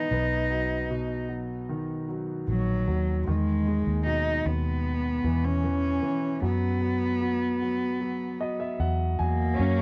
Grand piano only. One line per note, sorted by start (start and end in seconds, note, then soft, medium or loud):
0.00 0.14 D#3 soft
0.00 0.13 E3 soft
0.00 0.12 B3 soft
0.12 3.23 B3 medium
0.50 1.28 F#3 soft
0.91 2.44 B2 medium
1.29 2.07 F#3 soft
1.69 3.23 D#3 soft
2.09 2.86 F#3 soft
2.88 3.26 F#3 soft
3.27 6.39 D#3 medium
3.67 5.21 G#3 soft
4.06 5.60 B2 medium
5.24 5.63 E3 soft
5.64 6.01 E3 soft
6.03 6.41 E3 medium
6.42 6.80 F#3 medium
6.82 7.19 F#3 soft
7.21 7.60 F#3 medium
7.62 7.99 F#3 soft
8.01 8.39 F#3 medium
8.40 8.79 F#3 soft
8.40 8.59 D#5 medium
8.60 8.78 E5 medium
8.80 9.17 F#3 soft
8.80 9.16 F#5 medium
9.19 9.56 F#3 medium
9.19 9.56 G#5 medium
9.58 9.77 F#3 medium
9.78 9.82 F#3 medium